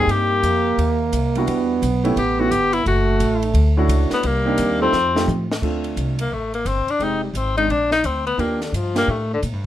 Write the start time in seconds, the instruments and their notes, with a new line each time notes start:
Already playing: grand piano G3 A#3 C4 D#4, tenor saxophone G#4
0.00 grand piano G4
0.07 upright bass G2, trombone A#3, ride
0.11 tenor saxophone G4
0.43 upright bass F2, hi-hat pedal, ride
0.78 upright bass D#2, ride
1.12 upright bass C2, hi-hat pedal, ride
1.35 grand piano G3 B3 D4 E4 F#4, ride
1.47 upright bass E2, trombone B3, ride
1.82 upright bass B1, hi-hat pedal, ride
2.04 grand piano A3 B3 C#4 E4 G4, ride
2.16 upright bass A1, trombone B3, tenor saxophone G4, ride
2.39 grand piano A3 B3 C#4 E4 G4, tenor saxophone F#4
2.51 upright bass G1, tenor saxophone G4, hi-hat pedal, ride
2.73 tenor saxophone E4, ride
2.84 upright bass F#1, trombone A3, tenor saxophone F#4, ride
3.20 upright bass A1, hi-hat pedal, ride
3.42 ride
3.54 upright bass D2, ride
3.77 grand piano A3 C#4 D4 E4 F#4
3.88 upright bass C#2, hi-hat pedal, ride
4.11 tenor saxophone B3, muted upright bass stroke, snare, ride
4.23 upright bass C2, trombone G3, tenor saxophone A#3, ride
4.45 grand piano A#3 C4 D4 D#4 G4
4.58 upright bass D#2, hi-hat pedal, ride
4.80 grand piano A3 C4 D#4 F4 A4, tenor saxophone C4
4.92 upright bass F2, trombone F3, snare
5.15 grand piano A3 C4 D#4 F4 G4, snare
5.28 upright bass A2, hi-hat pedal, high tom
5.51 snare
5.62 upright bass D2, grand piano A3 C4 D4 F4, kick, crash
5.84 ride
5.97 upright bass C2, hi-hat pedal, ride
6.19 tenor saxophone A#3, ride
6.32 upright bass A1, tenor saxophone A3
6.54 tenor saxophone A#3, ride
6.65 upright bass G1, tenor saxophone C4, hi-hat pedal, ride
6.87 tenor saxophone D4, muted upright bass stroke, ride
7.00 upright bass F1, grand piano G#3 C4 D#4 G4, tenor saxophone D#4, ride
7.24 tenor saxophone G3
7.34 upright bass G#1, tenor saxophone C4, hi-hat pedal, ride
7.57 grand piano G#3 C4 D4 G#4, tenor saxophone D#4, ride
7.68 upright bass A#1, tenor saxophone D4, ride
7.91 tenor saxophone D#4, snare
8.04 upright bass D2, tenor saxophone C4, hi-hat pedal, ride
8.26 tenor saxophone B3, ride
8.38 upright bass D#2, grand piano A#3 D4 F4 G4, tenor saxophone A#3, ride
8.61 tenor saxophone D3, snare, ride
8.73 upright bass G2, tenor saxophone F3, hi-hat pedal, ride
8.95 grand piano A#3 D4 F4 G4, tenor saxophone A#3, snare, ride
9.08 upright bass A2, tenor saxophone A3
9.33 tenor saxophone D3
9.43 upright bass A#2, hi-hat pedal, ride
9.53 upright bass G2